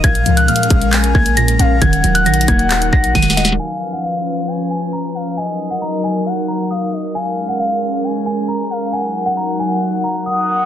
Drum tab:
HH |x--x--x--x--x-x-x-x--x--x--x-----x--x--x--x-----|x--x--x--x--x-x-x-x--x--x--x-----x--x-x-x-x-----|------------------------------------------------|------------------------------------------------|
CP |------------------------x-----------------------|------------------------x-----------------------|------------------------------------------------|------------------------------------------------|
SD |------------------------------------------------|------------------------------------o-o-o-o-o-o-|------------------------------------------------|------------------------------------------------|
BD |o-----------------o-----------o-----------------|o-----------------o-----------o-----o-----------|------------------------------------------------|------------------------------------------------|

HH |------------------------------------------------|------------------------------------------------|
CP |------------------------------------------------|------------------------------------------------|
SD |------------------------------------------------|------------------------------------------------|
BD |------------------------------------------------|------------------------------------------------|